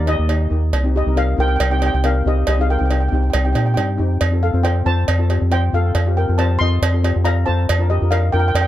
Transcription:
Already playing: fingered electric bass D#2
0.06 steel pan A#3 D#4 G4 D#5, cowbell
0.19 fingered electric bass D#2
0.28 steel pan A#3 D#4 G4, cowbell
0.50 fingered electric bass D#2, steel pan A#3 D#4 G4
0.73 fingered electric bass C2, cowbell
0.84 steel pan C4 D#4 G4
0.96 steel pan G4 D#5
1.06 fingered electric bass C2, steel pan C4 D#4 A#4
1.15 steel pan C4 D#4 G4 A#4 F5, cowbell
1.37 fingered electric bass C2, steel pan C4 D#4 G4 A#4 G5
1.48 steel pan G5
1.56 fingered electric bass C2, steel pan G5
1.60 steel pan G5, cowbell
1.70 steel pan C4 D#4 G4 G5
1.79 steel pan C4 D#4 G4 G5, cowbell
1.86 steel pan G5
1.94 fingered electric bass C2, steel pan G5
2.04 steel pan C4 D#4 G4 A#4 F5, cowbell
2.25 fingered electric bass C2, steel pan C4 D#4 G4 D#5
2.47 fingered electric bass C2, steel pan G4 D#5, cowbell
2.58 steel pan C4 D#4 G4 G#4 F5
2.70 steel pan A#4 G5
2.79 fingered electric bass C2, steel pan C4 D#4 G4 G5
2.85 steel pan C4 D#4 G5
2.91 steel pan G4 G5, cowbell
3.00 steel pan G5
3.08 fingered electric bass C2, steel pan C4 D#4 G5
3.13 steel pan G4 G5
3.23 steel pan G5
3.30 steel pan G5, cowbell
3.34 fingered electric bass C2, steel pan G5
3.44 steel pan C4 D#4 G4 G5
3.53 fingered electric bass A#2, steel pan C4 D#4 G4 G5, cowbell
3.58 steel pan G5
3.66 steel pan G5
3.74 fingered electric bass G2, steel pan C4 D#4 G4 G5, cowbell
3.80 steel pan G5
3.98 fingered electric bass F2, steel pan C4 D#4 G4
4.21 fingered electric bass F2, cowbell
4.31 steel pan C4 F4 A4
4.43 steel pan A4 F5
4.53 fingered electric bass F2, steel pan C4 F4 C5
4.63 steel pan C4 F4 A4 C5 G5, cowbell
4.85 fingered electric bass F2, steel pan C4 F4 A4 C5 A5
5.08 fingered electric bass F2, cowbell
5.18 steel pan C4 F4 A4
5.29 steel pan C4 F4 G4, cowbell
5.41 fingered electric bass F2
5.50 steel pan C4 F4 C5 G5, cowbell
5.73 fingered electric bass F2, steel pan C4 F4 A4 F5
5.95 fingered electric bass F2, cowbell
6.05 steel pan C4 F4 G4
6.17 steel pan A#4 G5
6.28 fingered electric bass F2, steel pan C4 F4 A4
6.38 steel pan C4 F4 G4 C5 A5, cowbell
6.59 fingered electric bass F2, steel pan C4 F4 A4 D#5 C6
6.82 fingered electric bass F2, cowbell
6.92 steel pan C4 F4 A4
7.03 steel pan C4 F4 G4, cowbell
7.16 fingered electric bass F2
7.24 steel pan C4 F4 A4 F5 A#5, cowbell
7.46 fingered electric bass F2, steel pan C4 F4 A4 C5 A5
7.69 fingered electric bass F2, cowbell
7.79 steel pan D4 F4 A#4
7.90 steel pan G4 D#5
8.01 fingered electric bass F2, steel pan D4 F4 A#4
8.11 steel pan D4 F4 A#4 F5, cowbell
8.32 fingered electric bass F2, steel pan D4 F4 A#4 G5
8.39 steel pan G5
8.48 steel pan G5
8.54 fingered electric bass F2, steel pan G5, cowbell
8.61 steel pan G5

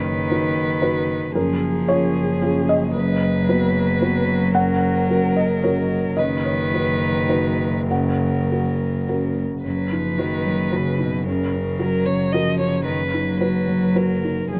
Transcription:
Already playing: double bass F#1, felt piano F#2 C#5, cello D#3, violin B4
0.31 felt piano D#4 F#4 B4
0.82 felt piano D#4 F#4 B4
1.35 double bass F#1, felt piano F#2 A#4, cello F3, violin G#4
1.88 felt piano C#4 F4 G#4 C#5
2.42 felt piano C#4 F4 G#4
2.69 felt piano D#5
2.95 felt piano F#2, cello F#3, violin B4
3.49 felt piano B3 F#4 B4
4.01 felt piano B3 F#4 B4
4.55 felt piano F#2 F#5, violin A#4
5.09 felt piano C#4 F#4 A#4
5.36 felt piano D#5
5.63 felt piano C#4 F#4 A#4 C#5
6.17 double bass F#1, felt piano F#2 D#5, cello D#3, violin B4
6.45 felt piano C#5
6.73 felt piano D#4 F#4 B4
7.29 felt piano D#4 F#4 B4
7.89 felt piano F#2 F#5, cello C#3, violin A#4
8.50 felt piano C#4 F#4 A#4
9.08 felt piano C#4 F#4 A#4
9.64 double bass F#1, felt piano F#2, cello F#3, violin B4
9.92 cello F3, felt piano D#4
10.18 cello D#3, felt piano F#4 B4
10.46 felt piano F#3
10.72 cello C#3, felt piano F#4 B4
10.99 cello B2, felt piano D#4
11.25 felt piano F#2, cello C#3, violin A#4
11.53 felt piano C#4
11.79 cello F#3, felt piano F#4 A#4, violin A#4
12.06 felt piano C#3, violin C#5
12.33 cello F3, felt piano F#4 A#4, violin D#5
12.59 felt piano C#4, violin C#5
12.85 felt piano F#2, cello D#3, violin B4
13.11 cello F#3, felt piano D#4
13.40 felt piano F#4 B4, violin B4
13.68 felt piano F#3
13.96 felt piano F#4 B4, violin A#4
14.24 felt piano D#4
14.52 double bass F#1, felt piano F#2, cello F3, violin G#4

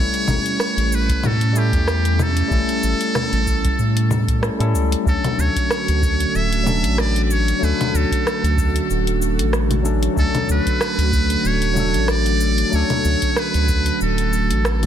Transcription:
Already playing: tine electric piano G3 A3 C#4 E4, analog synth pad G3 A3 C#4, muted trumpet C#5
0.00 tine electric piano A4
0.14 closed hi-hat, cabasa
0.28 analog synth bass A1, low conga, cabasa
0.46 closed hi-hat, cabasa
0.60 cross-stick, cabasa
0.77 analog synth bass A1, closed hi-hat, cabasa
0.92 muted trumpet B4, cabasa
1.09 kick, closed hi-hat, cabasa
1.23 analog synth bass A2, muted trumpet A4, low conga, cabasa
1.41 closed hi-hat, cabasa
1.52 tine electric piano G3 A3 C#4, cabasa
1.57 tine electric piano E4 A4, muted trumpet G4
1.73 analog synth bass E2, kick, closed hi-hat, cabasa
1.88 cross-stick, cabasa
2.05 closed hi-hat, cabasa
2.19 muted trumpet A4, low conga, cabasa
2.37 closed hi-hat, cabasa
2.48 analog synth bass A1, tine electric piano G3 A3 C#4, kick, cabasa
2.52 tine electric piano E4 A4
2.69 closed hi-hat, cabasa
2.83 analog synth bass A1, cabasa
3.01 closed hi-hat, cabasa
3.15 cross-stick, low conga, cabasa
3.32 analog synth bass A1, closed hi-hat, cabasa
3.47 kick, cabasa
3.64 kick, closed hi-hat, cabasa
3.79 analog synth bass A2, cabasa
3.97 closed hi-hat, cabasa
4.10 analog synth bass A2, low conga, cabasa
4.28 kick, closed hi-hat, cabasa
4.41 tine electric piano G3 A3 C#4 E4 A4, cross-stick, cabasa
4.59 analog synth bass A2, tine electric piano G3 A3 C#4 E4 A4, closed hi-hat, cabasa
4.74 analog synth bass C#2, cabasa
4.92 closed hi-hat, cabasa
5.04 analog synth bass D2, analog synth pad D3 A3 F#4 A4, tine electric piano F#3 A3 C#4, kick, cabasa
5.08 tine electric piano D4 A4, muted trumpet A4
5.24 closed hi-hat, low conga, cabasa
5.38 analog synth bass D2, muted trumpet C#5, cabasa
5.56 kick, closed hi-hat, cabasa
5.71 cross-stick, cabasa
5.88 analog synth bass D2, closed hi-hat, cabasa
6.02 kick, cabasa
6.20 closed hi-hat, cabasa
6.35 analog synth bass D1, muted trumpet E5, cabasa
6.53 closed hi-hat, cabasa
6.64 tine electric piano F#3 A3 C#4, low conga, cabasa
6.68 tine electric piano D4 A4
6.84 analog synth bass A1, closed hi-hat, cabasa
6.98 muted trumpet D5, cross-stick, cabasa
7.16 closed hi-hat, cabasa
7.25 muted trumpet D5
7.31 muted trumpet C#5, cabasa
7.48 closed hi-hat, cabasa
7.59 analog synth bass D2, tine electric piano F#3 A3 C#4
7.63 tine electric piano D4 A4, muted trumpet B4, cabasa
7.81 closed hi-hat, low conga, cabasa
7.94 analog synth bass D2, muted trumpet A4, cabasa
8.11 kick, closed hi-hat, cabasa
8.27 cross-stick, cabasa
8.43 analog synth bass D2, closed hi-hat, cabasa
8.58 kick, cabasa
8.76 closed hi-hat, cabasa
8.90 analog synth bass D1, cabasa
9.07 closed hi-hat, cabasa
9.22 cabasa
9.39 analog synth bass A1, closed hi-hat, cabasa
9.53 cross-stick, cabasa
9.71 closed hi-hat, low conga, cabasa
9.83 tine electric piano F#3 A3 C#4 D4 A4, cabasa
10.03 closed hi-hat, cabasa
10.14 analog synth bass D2, tine electric piano F#3 A3 C#4, kick, cabasa
10.18 tine electric piano D4 A4, muted trumpet A4
10.35 closed hi-hat, low conga, cabasa
10.49 analog synth bass D2, muted trumpet B4, cabasa
10.66 kick, closed hi-hat, cabasa
10.81 cross-stick, cabasa
10.98 analog synth bass D2, closed hi-hat, cabasa
11.13 kick, cabasa
11.30 closed hi-hat, cabasa
11.44 analog synth bass D1, muted trumpet C#5, cabasa
11.62 closed hi-hat, cabasa
11.74 tine electric piano F#3 A3, low conga, cabasa
11.78 tine electric piano D4 A4
11.94 analog synth bass A1, closed hi-hat, cabasa
12.08 muted trumpet D5, cross-stick, cabasa
12.26 closed hi-hat, cabasa
12.41 cabasa
12.58 closed hi-hat, cabasa
12.70 analog synth bass D2, tine electric piano F#3 A3 C#4, cabasa
12.74 tine electric piano D4 A4, muted trumpet C#5
12.90 closed hi-hat, low conga, cabasa
13.05 analog synth bass D2, cabasa
13.22 kick, closed hi-hat, cabasa
13.36 muted trumpet B4, cross-stick, cabasa
13.54 analog synth bass D2, closed hi-hat, cabasa
13.68 kick, cabasa
13.86 closed hi-hat, cabasa
14.01 analog synth bass D1, muted trumpet A4, cabasa
14.18 closed hi-hat, cabasa
14.33 cabasa
14.51 analog synth bass A1, closed hi-hat, cabasa
14.65 cross-stick, cabasa
14.83 closed hi-hat, low conga

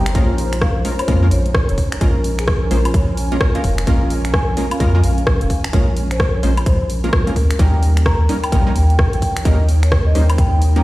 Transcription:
Already playing: sub bass G1, ambient pad D#4 C5 A#5
0.06 finger snap, closed hi-hat
0.15 sub bass A#1, synth stab G#3 A#3 C#4 F4 A#4, analog synth pad C#4, ambient pad C#4, vibraphone C#5, kick, closed hi-hat
0.38 ambient pad A#4, open hi-hat
0.53 finger snap, closed hi-hat
0.61 vibraphone F5, kick, cross-stick
0.76 ambient pad G#5
0.85 synth stab G#3 A#3 C#4 F4 A#4, open hi-hat
0.99 vibraphone C#5, closed hi-hat, high woodblock
1.08 sub bass F2, synth stab G#3 A#3 C#4 F4 A#4, kick, closed hi-hat
1.23 synth stab G#3 A#3 C#4 F4 A#4
1.31 sub bass A#1, vibraphone C#5, open hi-hat
1.46 closed hi-hat
1.55 kick, cross-stick
1.69 sub bass F1, vibraphone C#5, closed hi-hat
1.78 kick, open hi-hat
1.92 finger snap, closed hi-hat
2.01 sub bass A#1, synth stab G#3 A#3 C#4 F4 A#4, vibraphone A#4, kick, closed hi-hat
2.24 open hi-hat
2.39 vibraphone G#4, finger snap, closed hi-hat
2.48 kick, cross-stick
2.62 vibraphone A#4
2.71 sub bass A#1, synth stab G#3 A#3 C#4 F4 C5, open hi-hat
2.85 closed hi-hat, high woodblock
2.94 vibraphone C#5, kick, closed hi-hat
3.17 open hi-hat
3.32 synth stab G#3 A#3 C#4 F4 A#4, vibraphone C#5, closed hi-hat
3.41 kick, cross-stick
3.55 synth stab G#3 A#3 C#4 F4 A#4, vibraphone F5, closed hi-hat
3.64 sub bass F1, kick, open hi-hat
3.78 finger snap, closed hi-hat
3.87 sub bass A#1, synth stab G#3 A#3 C#4 F4 A#4, vibraphone F5, kick, closed hi-hat
4.10 open hi-hat
4.25 finger snap, closed hi-hat
4.34 vibraphone G#5, kick, cross-stick
4.57 synth stab G#3 A#3 C#4 F4 A#4, open hi-hat
4.71 vibraphone F5, closed hi-hat, high woodblock
4.80 sub bass F2, synth stab G#3 A#3 C#4 F4 A#4, kick, closed hi-hat
4.95 synth stab G#3 A#3 C#4 F4 A#4
5.03 sub bass A#1, vibraphone F5, open hi-hat
5.18 closed hi-hat
5.27 kick, cross-stick
5.41 sub bass F1, vibraphone F5, closed hi-hat
5.50 kick, open hi-hat
5.64 finger snap, closed hi-hat
5.73 sub bass A#1, synth stab G#3 A#3 C#4 F4 A#4, vibraphone C#5, kick, closed hi-hat
5.97 open hi-hat
6.11 vibraphone C5, finger snap, closed hi-hat
6.20 kick, cross-stick
6.34 vibraphone C#5
6.43 sub bass A#1, synth stab G#3 A#3 C#4 F4 C5, open hi-hat
6.57 closed hi-hat, high woodblock
6.66 vibraphone C5, kick, closed hi-hat
6.90 open hi-hat
7.04 synth stab G#3 A#3 C#4 F4 A#4, vibraphone A#4, closed hi-hat
7.13 kick, cross-stick
7.27 synth stab G#3 A#3 C#4 F4 A#4, vibraphone A#4, closed hi-hat
7.36 sub bass D#2, ambient pad D#4, kick, open hi-hat
7.51 finger snap, closed hi-hat
7.56 sub bass D#2, synth stab G3 A#3 C#4 D#4 A#4, analog synth pad A#4, ambient pad C#5, vibraphone G5, kick, closed hi-hat
7.81 ambient pad G5, open hi-hat
7.97 finger snap, closed hi-hat
8.06 vibraphone A#5, kick, cross-stick
8.29 synth stab G3 A#3 C#4 D#4 A#4, open hi-hat
8.43 vibraphone G5, closed hi-hat, high woodblock
8.52 sub bass A#1, synth stab G3 A#3 C#4 D#4 A#4, kick, closed hi-hat
8.67 synth stab G3 A#3 C#4 D#4 A#4
8.76 sub bass D#2, vibraphone G5, open hi-hat
8.90 closed hi-hat
8.99 kick, cross-stick
9.13 sub bass A#1, vibraphone G5, closed hi-hat
9.22 kick, open hi-hat
9.37 finger snap, closed hi-hat
9.45 sub bass D#2, synth stab G3 A#3 C#4 D#4 A#4, vibraphone D#5, kick, closed hi-hat
9.69 open hi-hat
9.83 vibraphone C#5, finger snap, closed hi-hat
9.92 kick, cross-stick
10.06 vibraphone D#5
10.15 sub bass D#2, synth stab G3 A#3 C#4 D#4 C5, open hi-hat
10.30 closed hi-hat, high woodblock
10.38 vibraphone G5, kick, closed hi-hat
10.62 open hi-hat
10.76 synth stab G3 A#3 C#4 D#4 A#4, vibraphone G5, closed hi-hat

